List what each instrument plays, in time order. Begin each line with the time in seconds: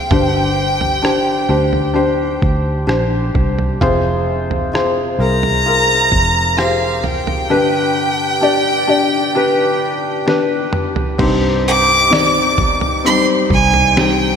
Already playing: felt piano F4 G#4 C5, violin G5
0.11 fingered electric bass G1, felt piano G2 D3 D4 G4 C5, kick, floor tom
0.81 floor tom
1.02 felt piano D4 G4 C5, cross-stick
1.49 fingered electric bass D2, felt piano D4 G4 C5
1.73 floor tom
1.94 felt piano D4 G4 C5
2.42 fingered electric bass D2, kick
2.87 fingered electric bass A#1, felt piano D4 G4 C5, cross-stick
3.35 fingered electric bass C2, kick, floor tom
3.58 floor tom
3.81 fingered electric bass F1, felt piano C3 F4 G#4 C5, kick, floor tom
4.51 floor tom
4.73 felt piano F4 G#4 C5, cross-stick
5.19 fingered electric bass C2, felt piano F4 G#4 A#4, violin A#5
5.43 floor tom
5.66 felt piano F4 G#4 A#4
6.11 fingered electric bass F1, kick
6.57 felt piano F4 G4 C5, violin F5, cross-stick
6.64 felt piano G#4
7.04 violin G5, floor tom
7.27 floor tom
7.50 felt piano G2 D3 D4 G4 B4
8.41 felt piano D4 G4 D5
8.87 felt piano D4 G4 D5
9.35 felt piano D4 G4 B4
10.27 felt piano D4 G4 B4, snare
10.73 mid tom
10.96 floor tom
11.18 fingered electric bass C2, felt piano G2 C4 D#4 G4 C5, kick, floor tom, crash
11.68 violin D6
12.10 felt piano C4 D#4 G4 D5, snare
12.58 kick, floor tom
12.81 floor tom
13.04 felt piano G3 C4 D#4 C5, violin C6
13.50 fingered electric bass C2, violin G#5, kick
13.74 floor tom
13.96 felt piano G3 C4 D#4 C5, violin G5, snare